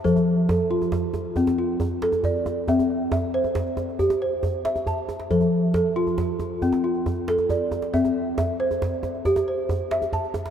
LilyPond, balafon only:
\new Staff \with { instrumentName = "Balafon" } { \time 12/8 \key c \major \tempo 4. = 91 << { <a' a''>4 a'4. r4 f'4. d''4 | e''4 e''4. r4 c''4. a''4 | a'4 a'4. r4 f'4. d''4 | e''4 e''4. r4 c''4. a''4 | } \\ { f4 r8 f'4 r8 c'4 r8 a'4 r8 | c'4 r8 c''4 r8 g'4 r8 e''4 r8 | f4 r8 f'4 r8 c'4 r8 a'4 r8 | c'4 r8 c''4 r8 g'4 r8 e''4 r8 | } >> }